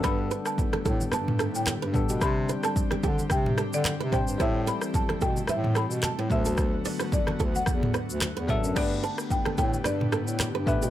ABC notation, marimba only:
X:1
M:4/4
L:1/16
Q:"Swing 16ths" 1/4=110
K:G
V:1 name="Marimba"
b3 a4- a a3 g3 z2 | b3 a4- a g3 d3 g2 | e2 b2 a2 g2 e2 b2 a2 e2- | e4 d3 f6- f e2 |
d2 a2 g2 g2 d6 e2 |]